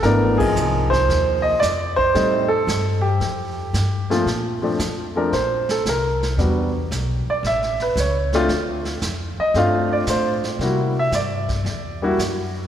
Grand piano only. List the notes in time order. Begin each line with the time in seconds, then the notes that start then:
0.03 E3 A3 B3 D4 A#4
0.38 F3 A#3 C4 D#4 G#4
0.90 C5
1.42 D#5
1.60 D5
1.96 C5
2.14 G3 A3 C4 D#4
2.48 A4
3.01 G4
4.10 A#2 F3 A3 C4 F4
4.62 F3 A3 C4 D4
5.16 F3 A3 C4 D4 A#4
5.33 C5
5.71 A4
5.89 A#4
6.38 G3 B3 D4 F#4
7.30 D5
7.47 E5
7.82 B4
8.00 C#5
8.34 A3 C4 D4 F4
9.40 D#5
9.56 A3 C4 D4 F4 F5
9.93 D5
10.10 C5
10.61 G3 A#3 E4 F#4
10.99 E5
11.15 D5
12.02 G3 A#3 E4 F#4